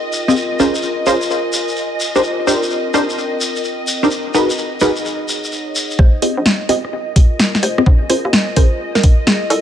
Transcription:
Already playing: ambient pad F4 A#4 D#5 G5, violin section D#5
0.13 shekere
0.28 synth stab C4 F4 G4 G#4 D#5, shekere
0.36 shekere
0.60 synth stab C#4 F4 G#4 A#4 C5, shekere
0.75 shekere
0.82 shekere
1.06 synth stab C#4 F4 G#4 A#4 C5, shekere
1.11 ambient pad G#5
1.21 shekere
1.30 shekere
1.53 shekere
1.68 shekere
1.76 shekere
2.00 ambient pad C4, shekere
2.15 synth stab D4 D#4 G4 A#4 C5, shekere
2.23 shekere
2.47 synth stab D4 D#4 G4 A#4 C5, shekere
2.63 shekere
2.70 ambient pad G5, shekere
2.94 synth stab D4 D#4 G4 A#4 C5, shekere
3.10 shekere
3.18 shekere
3.41 shekere
3.56 shekere
3.64 shekere
3.87 shekere
4.03 synth stab D4 D#4 G4 A#4 C5, shekere
4.11 ambient pad D#4, shekere
4.30 synth stab D#4 G#4, ambient pad G#4, shekere
4.34 synth stab F#4 A#4 B4
4.50 shekere
4.58 shekere
4.80 synth stab D#4 F#4 G#4 A#4 B4, shekere
4.96 ambient pad C#5 F#5, shekere
5.05 shekere
5.29 shekere
5.44 shekere
5.52 shekere
5.76 shekere
5.91 shekere
5.99 fm bass F1, ambient pad F4, synth pluck C5, violin section D#5, kick
6.22 synth stab C4 F4 G4 G#4 D#5, ambient pad A#4, open hi-hat
6.37 fm bass A#1
6.46 snare
6.69 synth stab C4 F4 G4 G#4 D#5, open hi-hat
6.85 ambient pad D#5 G#5, cross-stick
7.16 fm bass F1, kick, open hi-hat
7.39 snare
7.55 snare
7.63 fm bass F1, synth pluck C5, open hi-hat
7.78 synth stab C4 F4 G4 G#4 D#5, cross-stick
7.86 fm bass A#1, kick
8.09 synth stab C#4 F4 G#4 A#4 C5, synth pluck C5, open hi-hat
8.25 fm bass D#2, cross-stick
8.33 snare
8.56 synth stab C#4 F4 G#4 A#4 C5, synth pluck C5, kick, open hi-hat
8.95 synth pluck A#4, snare
9.03 fm bass A#1, kick, open hi-hat
9.27 synth pluck G#4, snare
9.50 fm bass C2, synth pluck A4, open hi-hat

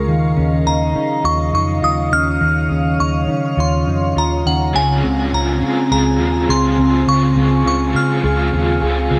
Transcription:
Already playing: ambient pad C#3 F5, clean electric guitar G#3 F4 A#4
0.07 picked electric bass D#2, clean electric guitar D#3, ambient pad F#3 D#5
0.37 picked electric bass D#2, clean electric guitar C#4
0.66 picked electric bass D#2, clean electric guitar D#4, synth bell A#5
0.95 picked electric bass D#3, clean electric guitar C#4
1.24 picked electric bass D#2, clean electric guitar F4, synth bell C#6
1.54 picked electric bass F2, clean electric guitar D#4, synth bell C#6
1.82 picked electric bass D#2, clean electric guitar F4, synth bell D#6
2.12 picked electric bass D#2, clean electric guitar C#4, synth bell F6
2.39 picked electric bass D#2, clean electric guitar D#3, ambient pad C#5
2.70 picked electric bass D#2, clean electric guitar C#4
2.99 picked electric bass D#2, clean electric guitar D#4, synth bell C#6
3.28 picked electric bass D#3, clean electric guitar C#4
3.57 picked electric bass D#2, clean electric guitar F4, synth bell C6
3.87 picked electric bass F2, clean electric guitar D#4
4.16 picked electric bass D#2, clean electric guitar F4, synth bell A#5
4.46 picked electric bass D#2, clean electric guitar C#4, synth bell F#5
4.73 picked electric bass C#2, overdriven electric guitar C#3 G#3 C4 F4 G#4, clean electric guitar C#3, ambient pad C4 G#5, synth bell G#5
5.04 picked electric bass C#2, clean electric guitar C4
5.33 picked electric bass C#2, clean electric guitar F4, synth bell A#5
5.60 picked electric bass C#3, clean electric guitar C4, overdriven electric guitar F4 G#4
5.65 overdriven electric guitar C4
5.89 picked electric bass C#2, overdriven electric guitar G#3 C4 F4, clean electric guitar G#4, synth bell A#5
5.94 overdriven electric guitar G#4
6.20 picked electric bass D#2, clean electric guitar F4
6.47 picked electric bass C#2, overdriven electric guitar G#3 C4 F4, clean electric guitar G#4, synth bell C6
6.51 overdriven electric guitar G#4
6.78 picked electric bass C#2, clean electric guitar C4
7.06 picked electric bass C#2, overdriven electric guitar C#3 G#3 C4 F4 G#4, clean electric guitar C#3, synth bell C#6
7.36 picked electric bass C#2, clean electric guitar C4
7.65 picked electric bass C#2, clean electric guitar F4, synth bell C#6
7.93 picked electric bass C#3, clean electric guitar C4, overdriven electric guitar F4 G#4, synth bell F6
7.97 overdriven electric guitar C4
8.23 picked electric bass C#2, overdriven electric guitar G#3 C4 F4 G#4, clean electric guitar G#4
8.53 picked electric bass D#2, clean electric guitar F4
8.81 picked electric bass C#2, overdriven electric guitar G#3 C4 F4, clean electric guitar G#4
8.86 overdriven electric guitar G#4
9.10 picked electric bass C#2, clean electric guitar C4

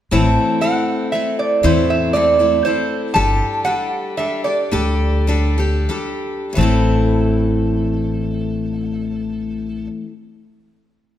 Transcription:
0.11 upright bass A1, steel-string acoustic guitar A2 E3 A3 C4 E4 A4, resonator guitar played with a steel bar A5
0.61 steel-string acoustic guitar A3 C4 E4 A4, resonator guitar played with a steel bar F#5
1.12 steel-string acoustic guitar A3 C4 E4 A4, resonator guitar played with a steel bar E5
1.39 resonator guitar played with a steel bar D5
1.63 upright bass E2, steel-string acoustic guitar A2 E3 A3 C4 E4 A4, resonator guitar played with a steel bar C5
1.90 resonator guitar played with a steel bar E5
2.13 steel-string acoustic guitar A3 C4 E4 A4, resonator guitar played with a steel bar D5
2.39 steel-string acoustic guitar A3 C4 E4 A4
2.65 steel-string acoustic guitar A3 C4 E4 A4, resonator guitar played with a steel bar C5
3.14 upright bass G1, steel-string acoustic guitar G3 D4 G4 A4, resonator guitar played with a steel bar A5
3.65 steel-string acoustic guitar G3 D4 G4 A4, resonator guitar played with a steel bar F#5
4.17 steel-string acoustic guitar G3 D4 G4 A4, resonator guitar played with a steel bar E5
4.44 steel-string acoustic guitar D4 G4 A4, resonator guitar played with a steel bar D5
4.71 upright bass D2, steel-string acoustic guitar G3 D4 G4 A4
5.27 steel-string acoustic guitar G3 D4 G4 A4
5.58 steel-string acoustic guitar D4 G4 A4
5.89 steel-string acoustic guitar G3 D4 G4 A4
6.53 steel-string acoustic guitar A2 E3 A3
6.57 upright bass A1, steel-string acoustic guitar C4 E4, resonator guitar played with a steel bar A4
6.63 steel-string acoustic guitar A4

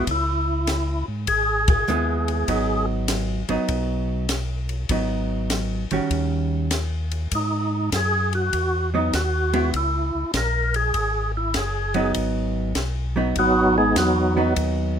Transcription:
0.07 tonewheel organ C#2 E4, kick, ride
0.67 snare, hi-hat pedal, ride
1.08 tonewheel organ G#2
1.27 tonewheel organ G#1 G#4, kick, ride
1.68 tonewheel organ G#4, kick, ride
1.88 tonewheel organ D#2, hollow-body jazz guitar G#3 B3 E4, hi-hat pedal
2.28 ride
2.48 tonewheel organ G#1, hollow-body jazz guitar F#3 B3 D#4, kick, ride
3.08 snare, hi-hat pedal, ride
3.49 tonewheel organ G#1, hollow-body jazz guitar F#3 B3 D#4, ride
3.68 tonewheel organ B1, kick, ride
4.29 snare, hi-hat pedal, ride
4.69 ride
4.89 tonewheel organ G#1, hollow-body jazz guitar F#3 B3 D#4, kick, ride
5.50 snare, hi-hat pedal, ride
5.91 tonewheel organ G#1, hollow-body jazz guitar D#3 G3 C#4 F#4, ride
6.11 tonewheel organ D#2, kick, ride
6.71 snare, hi-hat pedal, ride
7.11 ride
7.31 tonewheel organ G#2 D#4, kick, ride
7.92 tonewheel organ F#2 G#4, kick, snare, hi-hat pedal, ride
8.33 tonewheel organ F#4, ride
8.53 tonewheel organ E2, kick, ride
8.94 hollow-body jazz guitar F#3 B3 D#4, tonewheel organ D#4
9.13 tonewheel organ D#2 F#4, kick, snare, hi-hat pedal, ride
9.53 hollow-body jazz guitar G#3 B3 E4, ride
9.73 tonewheel organ C#2 E4, kick, ride
10.15 tonewheel organ C#2
10.34 tonewheel organ A#1 A#4, kick, snare, hi-hat pedal, ride
10.74 tonewheel organ G#4, ride
10.94 tonewheel organ G#1, kick, ride
11.37 tonewheel organ E4
11.54 tonewheel organ F#1 G#4, kick, snare, hi-hat pedal, ride
11.94 hollow-body jazz guitar F#3 B3 D#4, ride
12.14 tonewheel organ G#1, kick, ride
12.75 tonewheel organ B1, kick, snare, hi-hat pedal, ride
13.16 hollow-body jazz guitar F#3 B3 D#4
13.36 tonewheel organ G#1 F#3 B3 D#4 F#4, kick, ride
13.78 tonewheel organ G#3 B3 D#4 G#4
13.96 tonewheel organ E2 F#3 B3 D#4 F#4, kick, snare, hi-hat pedal, ride
14.37 hollow-body jazz guitar F#3 B3 D#4
14.56 tonewheel organ D#2, kick, ride

